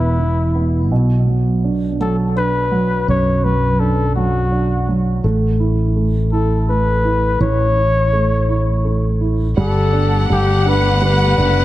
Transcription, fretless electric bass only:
Already playing: E1
0.91 B1
3.08 B1
5.24 A1
7.40 A1
9.57 G1
10.30 G1
11.38 F#1

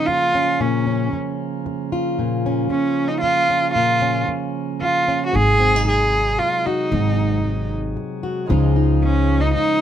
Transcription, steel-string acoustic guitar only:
Already playing: C#4
0.08 muted steel-string acoustic guitar stroke
0.35 C#4
0.60 A#2
0.87 C#4
1.13 muted steel-string acoustic guitar stroke
1.66 muted steel-string acoustic guitar stroke
1.92 F4
2.19 A#2
2.46 C#4
2.70 muted steel-string acoustic guitar stroke
3.22 muted steel-string acoustic guitar stroke
3.50 C#4
3.76 A#2
4.02 C#4
4.28 muted steel-string acoustic guitar stroke
4.81 muted steel-string acoustic guitar stroke
5.08 C#4
5.33 G#2
5.60 C4
5.76 D#4
5.88 muted steel-string acoustic guitar stroke
6.40 muted steel-string acoustic guitar stroke
6.67 F#4
6.92 G#2
7.19 D#4
7.44 muted steel-string acoustic guitar stroke
7.97 muted steel-string acoustic guitar stroke
8.23 F#4
8.49 C#3 F3 G#3 D#4 F4
8.76 D#4
9.02 muted steel-string acoustic guitar stroke
9.56 muted steel-string acoustic guitar stroke

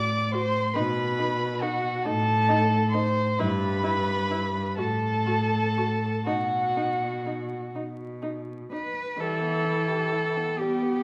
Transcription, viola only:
0.33 F#4
0.75 D#4
1.19 D#4
1.62 D#4
2.05 D#4
2.49 D#4
2.94 D#4
3.39 E4
3.83 E4
4.30 E4
4.78 F#4
5.26 F#4
5.77 F#4
6.26 D#4
6.77 D#4
7.26 D#4
7.75 D#4
8.22 D#4
8.72 D#4
9.18 E3
10.58 B3

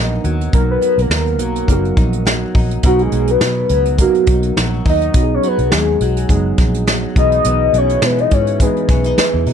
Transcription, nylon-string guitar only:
Already playing: B2 A#3 D#4
0.24 F#3
0.82 F#3
1.11 A#3
1.39 F#3
1.68 A#3
1.97 D#4
2.25 F#3
2.55 D#4
2.84 B2
3.12 F#3
3.70 F#3
3.98 A#3
4.28 D#4
4.57 F#3
4.85 D#4
5.43 F#3
5.72 G#3
6.01 F#3
6.30 G#3
6.59 D#4
6.87 F#3
7.17 B2
7.46 B2
7.75 E3
8.02 G#3
8.32 E3
8.61 G#3
8.90 C#4
9.06 D#4
9.18 E3
9.47 D#4

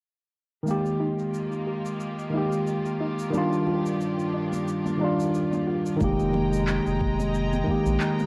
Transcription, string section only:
0.67 D#3 G#3 A#3 F4 G4
3.33 G2 D4
6.00 G#3 D#5 G5 A#5

